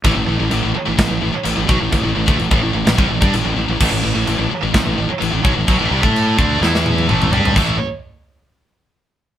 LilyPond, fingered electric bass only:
\new Staff \with { instrumentName = "Fingered electric bass" } { \clef bass \time 4/4 \key e \phrygian \tempo 4 = 128 a,,16 a,,16 a,,16 a,,16 a,,16 a,,16 r16 a,,16 a,,16 a,,16 a,,16 r16 a,,16 a,,16 b,,16 a,,16 | a,,16 a,,16 a,,16 d,16 a,,16 a,,16 a,,16 a,,16 a,,16 c,16 a,,16 g,16 a,,16 a,,16 a,,16 a,,16 | a,,16 a,,16 a,,16 a,,16 a,,16 a,,16 r16 a,,16 a,,16 a,,16 a,,16 r16 a,,16 a,,16 b,,16 a,,16 | b,,16 a,,16 c,16 a,8. d,8 e,4 a,,8 g,8 |
a,,8 r2. r8 | }